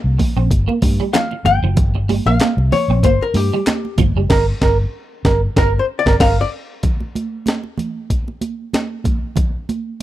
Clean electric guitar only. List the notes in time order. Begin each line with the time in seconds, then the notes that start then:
0.19 muted clean electric guitar stroke
0.37 C4
0.68 A#3
0.83 muted clean electric guitar stroke
1.00 G3
1.14 F3
1.32 muted clean electric guitar stroke
1.64 F3
1.95 muted clean electric guitar stroke
2.09 G3
2.27 A#3
2.41 A#3
2.73 muted clean electric guitar stroke
2.90 C4
3.04 A#3
3.36 muted clean electric guitar stroke
3.54 G3
3.68 muted clean electric guitar stroke
3.99 F3
4.17 G3